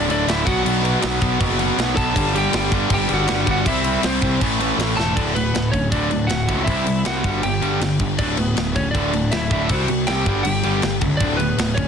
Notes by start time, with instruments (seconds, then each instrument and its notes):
0.08 picked electric bass D1, overdriven electric guitar D2 A2 D3, lead electric guitar D4 D5, crash
0.26 picked electric bass D1, overdriven electric guitar D2 A2 D3, lead electric guitar E4 E5, snare, crash
0.46 picked electric bass B1, overdriven electric guitar B2 F#3 B3, lead electric guitar F#4 F#5, kick, crash
0.64 picked electric bass B1, overdriven electric guitar B2 F#3 B3, crash
0.83 overdriven electric guitar B2 F#3 B3, crash
1.02 picked electric bass B1, overdriven electric guitar B2 F#3 B3, snare, crash
1.20 picked electric bass B1, overdriven electric guitar B2 F#3 B3, kick, crash
1.40 picked electric bass F#1, overdriven electric guitar B2 F#3 B3, kick, crash
1.58 overdriven electric guitar B2 F#3 B3, crash
1.78 picked electric bass B1, overdriven electric guitar B2 F#3 B3, snare, crash
1.96 picked electric bass B1, overdriven electric guitar B2 F#3 B3, lead electric guitar A4 A5, kick, crash
2.15 picked electric bass G1, overdriven electric guitar G2 D3 G3, kick, crash
2.34 overdriven electric guitar G2 D3 G3, lead electric guitar G4 G5, crash
2.53 picked electric bass G1, overdriven electric guitar G2 D3 G3, snare, crash
2.72 overdriven electric guitar G2 D3 G3, kick, crash
2.90 picked electric bass G1, overdriven electric guitar G2 D3 G3, lead electric guitar G5, kick, crash
2.94 lead electric guitar G4
3.09 picked electric bass G1, overdriven electric guitar G2 D3 G3, crash
3.13 lead electric guitar F#4 F#5
3.28 picked electric bass G1, overdriven electric guitar G2 D3 G3, snare, crash
3.47 picked electric bass G1, overdriven electric guitar G2 D3 G3, lead electric guitar F#4 F#5, kick, crash
3.66 picked electric bass C2, overdriven electric guitar C3 G3 C4, lead electric guitar E4 E5, kick, crash
3.84 overdriven electric guitar C3 G3 C4, crash
4.03 picked electric bass C2, overdriven electric guitar C3 G3 C4, lead electric guitar C4 C5, snare, crash
4.21 picked electric bass C2, overdriven electric guitar C3 G3 C4, kick, crash
4.41 picked electric bass A1, overdriven electric guitar A2 E3 A3, kick, crash
4.60 overdriven electric guitar A2 E3 A3, crash
4.76 picked electric bass A1, distorted electric guitar A2, crash
4.81 overdriven electric guitar A2 E3 A3, snare
4.97 picked electric bass E1, overdriven electric guitar A2 E3 A3, lead electric guitar A4 A5, snare
5.16 picked electric bass D1, overdriven electric guitar D2 A2 D3, lead electric guitar D4 D5, kick, crash
5.35 overdriven electric guitar D2 A2, lead electric guitar B3 B4, crash
5.54 picked electric bass D1, overdriven electric guitar D2 A2, snare, crash
5.72 overdriven electric guitar D2 A2, lead electric guitar C#4 C#5, kick, crash
5.92 picked electric bass D1, overdriven electric guitar D2 A2 D3, lead electric guitar D4 D5, kick, crash
6.11 picked electric bass D1, overdriven electric guitar D2 A2, crash
6.27 picked electric bass D1, overdriven electric guitar D2, lead electric guitar F#4 F#5, snare, crash
6.31 overdriven electric guitar A2
6.49 picked electric bass C#2, overdriven electric guitar D2 A2 D3, kick, crash
6.64 picked electric bass C2, overdriven electric guitar C3, lead electric guitar E4 E5, kick, crash
6.70 overdriven electric guitar G3 C4
6.86 picked electric bass C2, overdriven electric guitar C3 G3, crash
7.05 picked electric bass C2, overdriven electric guitar C3 G3 C4, lead electric guitar F#5, snare, crash
7.09 lead electric guitar F#4
7.24 picked electric bass G1, overdriven electric guitar G2 D3 G3, kick, crash
7.42 picked electric bass G1, overdriven electric guitar G2 D3, lead electric guitar G4 G5, crash
7.61 picked electric bass G1, overdriven electric guitar G2 D3 G3, crash
7.80 picked electric bass G1, overdriven electric guitar G2 D3, snare, crash
7.99 picked electric bass G1, overdriven electric guitar G2 D3, kick, crash
8.18 picked electric bass D1, overdriven electric guitar D2 A2 D3, lead electric guitar D5, kick, crash
8.22 lead electric guitar D4
8.37 overdriven electric guitar D2 A2, lead electric guitar B3 B4, crash
8.56 picked electric bass D1, overdriven electric guitar D2 A2, snare, crash
8.76 overdriven electric guitar D2 A2, lead electric guitar C#4 C#5, kick, crash
8.91 picked electric bass D1, overdriven electric guitar D2, lead electric guitar D4 D5, kick, crash
8.95 overdriven electric guitar A2 D3
9.13 picked electric bass D1, overdriven electric guitar D2 A2, crash
9.31 picked electric bass D1, overdriven electric guitar D2 A2, lead electric guitar E4 E5, snare, crash
9.51 picked electric bass D1, overdriven electric guitar D2 A2 D3, lead electric guitar E4 E5, kick, crash
9.69 picked electric bass C2, overdriven electric guitar C3 G3 C4, lead electric guitar F#5, kick, crash
9.73 lead electric guitar F#4
9.88 picked electric bass C2, overdriven electric guitar C3 G3, crash
10.07 picked electric bass C2, overdriven electric guitar C3 G3 C4, lead electric guitar G4 G5, snare, crash
10.26 picked electric bass G1, overdriven electric guitar G2 D3 G3, kick, crash
10.43 picked electric bass G1, overdriven electric guitar G2 D3, lead electric guitar G4 G5, crash
10.63 picked electric bass G1, overdriven electric guitar G2 D3 G3, crash
10.82 picked electric bass G1, overdriven electric guitar G2 D3, snare, crash
11.01 picked electric bass C#2, overdriven electric guitar G2 D3, kick, crash
11.17 picked electric bass D1, distorted electric guitar D3, lead electric guitar D5, kick, crash
11.22 overdriven electric guitar D2 A2 D3, lead electric guitar D4
11.37 overdriven electric guitar D2 A2, lead electric guitar B3 B4, crash
11.58 picked electric bass D1, overdriven electric guitar D2 A2, snare, crash
11.75 overdriven electric guitar D2 A2, lead electric guitar C#4 C#5, kick, crash